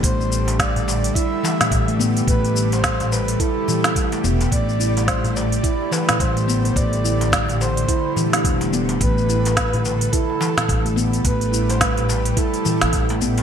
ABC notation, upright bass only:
X:1
M:4/4
L:1/16
Q:"Swing 16ths" 1/4=107
K:Am
V:1 name="Upright bass" clef=bass
A,,,6- A,,, z4 z A,,,3 z | A,,,6- A,,, z6 z E,,, z | A,,,6- A,,, z4 z A,,,3 z | A,,,6- A,,, z4 z E,,,3 z |
A,,,6- A,,, z4 z A,,,3 z | A,,,6- A,,, z4 A,,,4 z |]